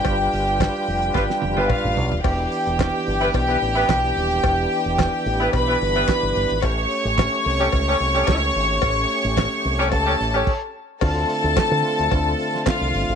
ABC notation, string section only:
X:1
M:4/4
L:1/8
Q:1/4=109
K:Ephr
V:1 name="String section"
[Gg]6 [Ff]2 | [Gg]8- | [Gg]4 [Bb]4 | [^c^c']8- |
[^c^c']4 [Aa]2 z2 | [Aa]6 [Ff]2 |]